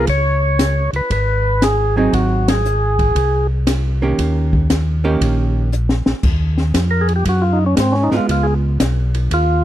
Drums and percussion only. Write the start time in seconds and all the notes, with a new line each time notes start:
0.07 kick, ride
0.59 snare, hi-hat pedal, ride
0.93 ride
1.10 kick, ride
1.62 snare, hi-hat pedal, ride
2.13 kick, ride
2.48 snare, ride
2.65 hi-hat pedal
2.99 kick, ride
3.16 kick, ride
3.67 snare, hi-hat pedal, ride
4.19 kick, ride
4.53 kick
4.70 snare, hi-hat pedal, ride
5.21 kick, ride
5.72 hi-hat pedal
5.89 snare
6.06 snare
6.23 kick, crash
6.58 snare
6.74 kick, snare, hi-hat pedal, ride
7.08 ride
7.25 kick, ride
7.77 kick, snare, hi-hat pedal, ride
7.94 snare
8.11 snare
8.29 kick, ride
8.80 kick, snare, hi-hat pedal, ride
9.14 ride
9.31 kick, ride